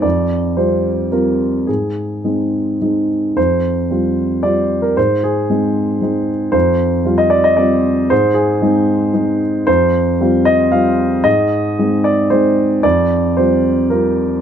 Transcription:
\new Staff \with { instrumentName = "Grand piano" } { \time 3/4 \key f \dorian \tempo 4 = 113 << { d''4 c''4 bes'4 | aes'2~ aes'8 r8 | c''2 d''8. bes'16 | c''8 aes'2 r8 |
c''4~ c''16 ees''16 d''16 ees''16 d''4 | c''8 aes'2 r8 | c''4. ees''8 f''4 | ees''4. d''8 c''4 |
d''4 c''4 bes'4 | } \\ { f,4 <g c' f'>4 <g c' f'>4 | aes,4 <aes c' ees'>4 <aes c' ees'>4 | f,4 <g c' f'>4 <g c' f'>4 | aes,4 <aes c' ees'>4 <aes c' ees'>4 |
f,4 <g c' f'>4 <g c' f'>4 | aes,4 <aes c' ees'>4 <aes c' ees'>4 | f,4 <g c' f'>4 <g c' f'>4 | aes,4 <aes c' ees'>4 <aes c' ees'>4 |
f,4 <g c' f'>4 <g c' f'>4 | } >> }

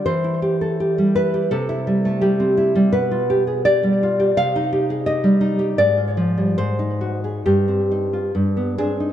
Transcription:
\new Staff \with { instrumentName = "Nylon-string guitar" } { \time 2/4 \key c \major \tempo 4 = 83 << { c''4. b'8 | a'4 g'8 r8 | \key c \minor b'4 d''4 | f''4 ees''4 |
d''4 c''4 | g'4. <c' aes'>8 | } \\ { e16 e'16 g'16 a'16 g'16 g16 e'16 g'16 | c16 e'16 g16 a16 g16 c'16 e'16 g16 | b,16 f'16 g'16 aes'16 g'16 g16 f'16 g'16 | c16 ees'16 g'16 aes'16 g'16 g16 ees'16 g'16 |
aes,16 f'16 f16 g16 aes,16 ees'16 ges'16 aes'16 | g,16 c'16 ees'16 f'16 g,16 b16 d'16 ees'16 | } >> }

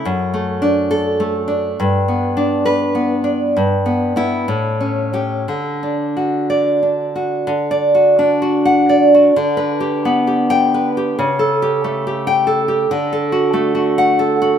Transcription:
\new Staff \with { instrumentName = "Nylon-string guitar" } { \time 2/4 \key d \major \tempo 4 = 66 << { r4 a'8 r8 | r4 b'8 r8 | \tuplet 3/2 { r4 e'8 r4 g'8 } | r4 d''8 r8 |
r4 r16 fis''8 r16 | r4 r16 g''8 r16 | r4 r16 g''8 r16 | r4 r16 fis''8 r16 | } \\ { \tuplet 3/2 { fis,8 a8 d'8~ d'8 a8 d'8 } | \tuplet 3/2 { g,8 b8 d'8~ d'8 b8 d'8 } | \tuplet 3/2 { g,8 b8 b8 a,8 cis'8 cis'8 } | \tuplet 3/2 { d8 d'8 fis'8~ fis'8 d'8 fis'8 } |
d16 d''16 fis'16 d'16 fis'8 d''16 fis'16 | d16 b'16 g'16 b16 g'8 b'16 g'16 | cis16 a'16 g'16 a16 g'8 a'16 g'16 | d16 a'16 fis'16 a16 fis'8 a'16 fis'16 | } >> }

